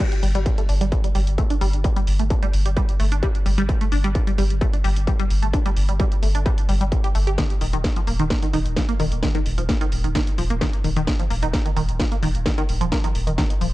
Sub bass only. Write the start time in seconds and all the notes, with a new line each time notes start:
0.23 G1
0.35 G1
0.69 G1
0.81 G1
1.15 G1
1.27 G1
1.61 G1
1.73 G1
2.07 G1
2.19 G1
2.53 G1
2.66 G1
3.00 G1
3.12 G1
3.46 G1
3.58 G1
3.92 G1
4.04 G1
4.38 G1
4.50 G1
4.84 G1
4.96 G1
5.30 G1
5.42 G1
5.76 G1
5.89 G1
6.23 G1
6.35 G1
6.69 G1
6.81 G1
7.15 G1
7.27 G1
7.61 D#1
7.73 D#1
8.07 D#1
8.19 D#1
8.53 D#1
8.66 D#1
9.00 D#1
9.12 D#1
9.46 D#1
9.58 D#1
9.92 D#1
10.04 D#1
10.38 D#1
10.50 D#1
10.84 D#1
10.96 D#1
11.30 D#1
11.43 D#1
11.76 D#1
11.89 D#1
12.23 D#1
12.35 D#1
12.69 D#1
12.81 D#1
13.15 D#1
13.27 D#1
13.61 D#1